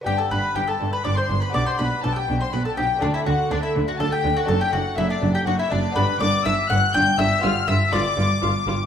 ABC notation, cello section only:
X:1
M:3/4
L:1/8
Q:1/4=122
K:G
V:1 name="Cello section" clef=bass
G,, G,, G,, G,, G,, G,, | B,, B,, B,, B,, B,, B,, | D, D, D, D, D, D, | F,, F,, F,, F,, F,, F,, |
G,, G,, G,, G,, G,, G,, | G,, G,, G,, G,, G,, G,, |]